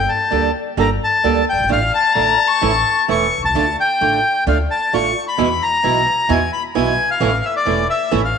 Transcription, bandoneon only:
0, 0, Header, 1, 2, 480
1, 0, Start_track
1, 0, Key_signature, -1, "minor"
1, 0, Tempo, 458716
1, 1774, Time_signature, 4, 2, 24, 8
1, 8772, End_track
2, 0, Start_track
2, 0, Title_t, "Bandoneon"
2, 0, Program_c, 0, 23
2, 0, Note_on_c, 0, 79, 73
2, 93, Note_on_c, 0, 81, 69
2, 107, Note_off_c, 0, 79, 0
2, 538, Note_off_c, 0, 81, 0
2, 837, Note_on_c, 0, 82, 79
2, 940, Note_off_c, 0, 82, 0
2, 1089, Note_on_c, 0, 81, 85
2, 1519, Note_off_c, 0, 81, 0
2, 1563, Note_on_c, 0, 79, 81
2, 1773, Note_off_c, 0, 79, 0
2, 1801, Note_on_c, 0, 77, 84
2, 2012, Note_off_c, 0, 77, 0
2, 2044, Note_on_c, 0, 81, 84
2, 3198, Note_off_c, 0, 81, 0
2, 3250, Note_on_c, 0, 85, 84
2, 3577, Note_off_c, 0, 85, 0
2, 3610, Note_on_c, 0, 81, 76
2, 3937, Note_off_c, 0, 81, 0
2, 3979, Note_on_c, 0, 79, 83
2, 4647, Note_off_c, 0, 79, 0
2, 4690, Note_on_c, 0, 77, 76
2, 4795, Note_off_c, 0, 77, 0
2, 4926, Note_on_c, 0, 81, 78
2, 5168, Note_off_c, 0, 81, 0
2, 5172, Note_on_c, 0, 85, 88
2, 5498, Note_off_c, 0, 85, 0
2, 5527, Note_on_c, 0, 83, 76
2, 5886, Note_on_c, 0, 82, 85
2, 5889, Note_off_c, 0, 83, 0
2, 6600, Note_on_c, 0, 80, 75
2, 6613, Note_off_c, 0, 82, 0
2, 6815, Note_off_c, 0, 80, 0
2, 6832, Note_on_c, 0, 83, 81
2, 6937, Note_off_c, 0, 83, 0
2, 7067, Note_on_c, 0, 80, 79
2, 7432, Note_off_c, 0, 80, 0
2, 7435, Note_on_c, 0, 77, 70
2, 7793, Note_on_c, 0, 76, 69
2, 7794, Note_off_c, 0, 77, 0
2, 7896, Note_off_c, 0, 76, 0
2, 7914, Note_on_c, 0, 74, 77
2, 8238, Note_off_c, 0, 74, 0
2, 8266, Note_on_c, 0, 76, 81
2, 8595, Note_off_c, 0, 76, 0
2, 8628, Note_on_c, 0, 77, 69
2, 8772, Note_off_c, 0, 77, 0
2, 8772, End_track
0, 0, End_of_file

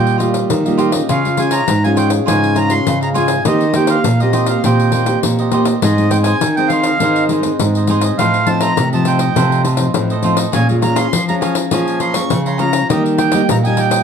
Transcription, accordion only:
0, 0, Header, 1, 2, 480
1, 0, Start_track
1, 0, Tempo, 589971
1, 894, Time_signature, 4, 2, 24, 8
1, 11416, End_track
2, 0, Start_track
2, 0, Title_t, "Accordion"
2, 0, Program_c, 0, 21
2, 0, Note_on_c, 0, 79, 82
2, 135, Note_off_c, 0, 79, 0
2, 898, Note_on_c, 0, 77, 76
2, 1130, Note_on_c, 0, 80, 78
2, 1143, Note_off_c, 0, 77, 0
2, 1234, Note_on_c, 0, 82, 91
2, 1255, Note_off_c, 0, 80, 0
2, 1491, Note_off_c, 0, 82, 0
2, 1497, Note_on_c, 0, 80, 89
2, 1607, Note_off_c, 0, 80, 0
2, 1608, Note_on_c, 0, 79, 83
2, 1718, Note_off_c, 0, 79, 0
2, 1859, Note_on_c, 0, 80, 102
2, 2091, Note_on_c, 0, 82, 90
2, 2104, Note_off_c, 0, 80, 0
2, 2202, Note_on_c, 0, 84, 105
2, 2216, Note_off_c, 0, 82, 0
2, 2431, Note_off_c, 0, 84, 0
2, 2462, Note_on_c, 0, 82, 81
2, 2515, Note_off_c, 0, 82, 0
2, 2573, Note_on_c, 0, 80, 83
2, 2797, Note_off_c, 0, 80, 0
2, 2821, Note_on_c, 0, 75, 90
2, 3053, Note_on_c, 0, 79, 75
2, 3065, Note_off_c, 0, 75, 0
2, 3165, Note_off_c, 0, 79, 0
2, 3171, Note_on_c, 0, 77, 83
2, 3420, Note_off_c, 0, 77, 0
2, 3432, Note_on_c, 0, 75, 75
2, 3647, Note_off_c, 0, 75, 0
2, 3649, Note_on_c, 0, 77, 68
2, 3776, Note_off_c, 0, 77, 0
2, 3779, Note_on_c, 0, 79, 71
2, 4225, Note_off_c, 0, 79, 0
2, 4752, Note_on_c, 0, 75, 82
2, 4967, Note_on_c, 0, 79, 80
2, 4968, Note_off_c, 0, 75, 0
2, 5023, Note_off_c, 0, 79, 0
2, 5071, Note_on_c, 0, 80, 92
2, 5331, Note_off_c, 0, 80, 0
2, 5339, Note_on_c, 0, 79, 96
2, 5434, Note_on_c, 0, 77, 92
2, 5449, Note_off_c, 0, 79, 0
2, 5892, Note_off_c, 0, 77, 0
2, 6655, Note_on_c, 0, 77, 89
2, 6888, Note_on_c, 0, 81, 99
2, 6903, Note_off_c, 0, 77, 0
2, 7002, Note_on_c, 0, 82, 99
2, 7004, Note_off_c, 0, 81, 0
2, 7232, Note_off_c, 0, 82, 0
2, 7270, Note_on_c, 0, 81, 90
2, 7381, Note_on_c, 0, 79, 82
2, 7387, Note_off_c, 0, 81, 0
2, 7826, Note_off_c, 0, 79, 0
2, 8577, Note_on_c, 0, 80, 95
2, 8685, Note_off_c, 0, 80, 0
2, 8812, Note_on_c, 0, 82, 94
2, 8919, Note_on_c, 0, 84, 97
2, 8926, Note_off_c, 0, 82, 0
2, 9150, Note_off_c, 0, 84, 0
2, 9182, Note_on_c, 0, 82, 84
2, 9235, Note_off_c, 0, 82, 0
2, 9288, Note_on_c, 0, 80, 79
2, 9398, Note_off_c, 0, 80, 0
2, 9531, Note_on_c, 0, 80, 89
2, 9757, Note_off_c, 0, 80, 0
2, 9770, Note_on_c, 0, 84, 88
2, 9872, Note_on_c, 0, 85, 102
2, 9885, Note_off_c, 0, 84, 0
2, 10106, Note_off_c, 0, 85, 0
2, 10140, Note_on_c, 0, 84, 85
2, 10247, Note_on_c, 0, 82, 94
2, 10250, Note_off_c, 0, 84, 0
2, 10474, Note_off_c, 0, 82, 0
2, 10493, Note_on_c, 0, 75, 80
2, 10602, Note_off_c, 0, 75, 0
2, 10726, Note_on_c, 0, 79, 87
2, 10978, Note_off_c, 0, 79, 0
2, 10987, Note_on_c, 0, 82, 86
2, 11038, Note_off_c, 0, 82, 0
2, 11109, Note_on_c, 0, 80, 92
2, 11219, Note_on_c, 0, 79, 88
2, 11225, Note_off_c, 0, 80, 0
2, 11416, Note_off_c, 0, 79, 0
2, 11416, End_track
0, 0, End_of_file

